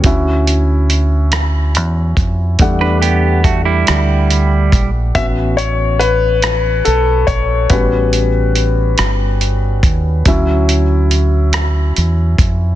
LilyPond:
<<
  \new Staff \with { instrumentName = "Grand piano" } { \time 6/8 \key a \mixolydian \tempo 4. = 47 << { r2. | r2. | e''8 cis''8 b'4 a'8 cis''8 | b'2 r4 |
r2. | } \\ { <cis' e' fis'>2. | <g a d' fis''>2. | <b cis' fis'>4. r4. | <g b cis' fis'>8 r2 r8 |
<fis cis' e'>8 r2 r8 | } >> }
  \new Staff \with { instrumentName = "Clean electric guitar" } { \time 6/8 \key a \mixolydian r2. | r16 <d' b'>16 <b g'>8 <a fis'>16 <g e'>4. r16 | r2. | r2. |
r2. | }
  \new Staff \with { instrumentName = "Fingered electric bass" } { \clef bass \time 6/8 \key a \mixolydian d,2 e,8 f,8 | e,4. d,4 bes,,8 | a,,2 b,,8 bes,,8 | a,,4. g,,4 dis,8 |
d,2 e,8 f,8 | }
  \new DrumStaff \with { instrumentName = "Drums" } \drummode { \time 6/8 <hh bd>8 hh8 hh8 <hh ss>8 hh8 <hh bd>8 | <hh bd>8 hh8 <hh bd>8 <hh ss>8 hh8 <hh bd>8 | <hh bd>8 hh8 hh8 <hh ss>8 hh8 <hh bd>8 | <hh bd>8 hh8 hh8 <hh ss>8 hh8 <hh bd>8 |
<hh bd>8 hh8 hh8 <hh ss>8 hh8 <hh bd>8 | }
>>